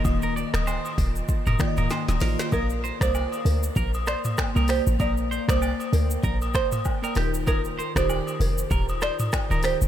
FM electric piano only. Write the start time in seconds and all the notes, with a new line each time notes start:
Already playing: D#3 A#3 F4 D#5
0.04 D#3 A#3 F4 D#5
1.59 D#3 A#3 F4 D5 G5
1.68 D#5
1.78 F5
1.91 D#5
2.20 D#3 A#3 F4 C5 D#5
2.51 A#3 A#4 D5 F5
3.00 A#3 A#4 D5 F5
4.55 A#3 A#4 D5 G5
4.99 A#3 A#4 D5 F5
5.47 A#3 A#4 D5 F5
5.56 G5
7.02 A#3 A#4 D5 G5
7.15 D#3 D#4 F4 A#4
7.95 D#3 D#4 F4 G4
9.50 D#3 D#4 F4 A#4